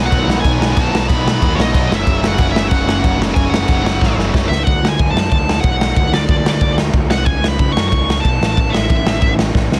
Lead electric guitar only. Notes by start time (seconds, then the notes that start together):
0.06 F#5
0.41 G#5
0.72 A5
1.08 B5
1.55 C#5
1.62 D#5
1.95 E5
2.28 F#5
2.52 E5
2.68 F#5
3.34 G#5
3.50 F#5
4.49 E5
4.63 F#5
4.89 G#5
5.11 A5
5.30 A5
5.61 F#5
5.97 F#5
6.14 D5
7.11 F#5
7.25 G#5
7.48 B5
7.73 C#6
7.89 C#6
8.20 A5
8.53 A5
8.70 E5